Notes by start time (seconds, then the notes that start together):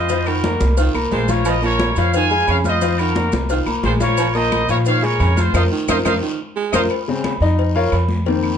Already playing: F2 C5 D#5
0.09 F3 F4 F5, cowbell, high conga, low agogo, long guiro, maracas
0.26 D#3 F#4 A#4, high conga, low agogo, claves, maracas
0.44 A#3 A#4 A#5, cowbell, high conga, low timbale, short guiro, maracas
0.61 C2, high conga, low agogo, short guiro, maracas
0.77 D#3 F4 F5 F6, cowbell, high conga, low agogo, long guiro, maracas
0.94 C2 A#3 A#4 A#5, high conga, low agogo, claves, maracas
1.11 A#1 G#3 F4 C5, cowbell, high conga, low timbale, short guiro, maracas
1.28 F3 F4 A#4 C#5 F5, high conga, low agogo, short guiro, maracas
1.45 F3 A#4 D#5, cowbell, high conga, low agogo, long guiro, claves, maracas
1.62 F3 A#3 A#4 C#5 A#5, high conga, maracas
1.79 cowbell, high conga, low timbale, low agogo, short guiro, claves, maracas
1.96 F2 F3 F4 C#5 F5, cowbell, high conga, low agogo, short guiro, maracas
2.14 D#3 F5 G#5, cowbell, high conga, long guiro, maracas
2.30 G#3 G#4 G#5, high conga, low agogo, maracas
2.48 F2 C#3 C#5 F5, cowbell, high conga, low timbale, low agogo, short guiro, claves, maracas
2.64 F4 C5 D#5 F5 F6, high conga, short guiro, maracas
2.81 F3 F4 F5, cowbell, high conga, low agogo, long guiro, maracas
2.99 D#3 F#4 A#4, high conga, low agogo, claves, maracas
3.15 A#3 A#4 A#5, cowbell, high conga, low timbale, short guiro, maracas
3.32 C2, high conga, low agogo, short guiro, maracas
3.49 D#3 F4 F5 F6, cowbell, high conga, low agogo, long guiro, maracas
3.66 C2 A#3 A#4 A#5, high conga, low agogo, claves, maracas
3.83 A#1 G#3 F4 C5, cowbell, high conga, low timbale, short guiro, maracas
4.00 F3 F4 A#4 C#5 F5, high conga, low agogo, short guiro, maracas
4.17 F3, cowbell, high conga, low agogo, long guiro, claves, maracas
4.34 F3 A#3 A#4 C5 D#5 A#5, high conga, maracas
4.52 cowbell, high conga, low timbale, low agogo, short guiro, claves, maracas
4.68 A#2 F3 F4 A#4 C#5 F5, cowbell, high conga, low agogo, short guiro, maracas
4.85 D#3 C#5 F5, cowbell, high conga, long guiro, maracas
5.03 G#3 G#4 A#4 C#5 G#5, high conga, low agogo, maracas
5.19 F2 C#3, cowbell, high conga, low timbale, low agogo, short guiro, claves, maracas
5.37 F4 C5 F5 F6, high conga, short guiro, maracas
5.54 F2 F4 A#4 C5 D#5 F5, cowbell, high conga, high timbale, long guiro, claves, maracas
5.72 D#3
5.88 F2 F4 A#4 C5 D#5 F5, cowbell, high conga, high timbale, long guiro, claves, maracas
6.05 F2 F4 A#4 C5 D#5 F5, cowbell, high conga, high timbale, long guiro, claves, maracas
6.22 D#3
6.56 G#3
6.73 F2 F4 A#4 C5 D#5 F5, cowbell, high conga, high timbale, long guiro, claves, maracas
6.90 cowbell, high conga, low agogo, long guiro, claves
7.08 C#3 G#3 C4, high conga
7.24 cowbell, high conga, low timbale, low agogo, short guiro, claves
7.40 F2 D#4 D#5, cowbell, high conga, low agogo, short guiro
7.58 cowbell, high conga, long guiro
7.75 F4 A#4 C#5 F5, high conga, low agogo
7.92 F2, cowbell, high conga, low timbale, low agogo, short guiro, claves
8.09 high conga, short guiro
8.26 D#3 A#3 C4, cowbell, high conga, low agogo, long guiro
8.43 high conga, low agogo, claves